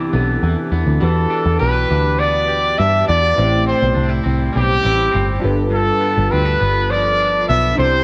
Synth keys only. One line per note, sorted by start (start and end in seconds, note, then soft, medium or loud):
0.00 0.12 C4 medium
0.00 0.12 D4 medium
0.00 0.10 E4 medium
0.00 0.11 G4 medium
0.12 0.97 D4 medium
0.12 1.01 E4 soft
0.12 1.01 G4 medium
0.12 1.02 A4 medium
0.98 3.32 D4 medium
0.98 3.32 F#4 medium
0.98 3.33 G4 medium
1.03 3.34 B4 medium
3.34 3.42 B3 soft
3.34 5.38 E4 medium
3.34 5.39 G4 medium
3.39 5.41 C4 medium
3.39 5.40 C5 medium
5.40 7.73 D4 medium
5.40 7.74 F4 medium
5.40 7.74 A4 medium
5.45 7.75 B4 medium
7.75 8.04 D4 medium
7.75 8.04 E4 medium
7.75 8.04 G4 medium
7.80 7.86 A4 medium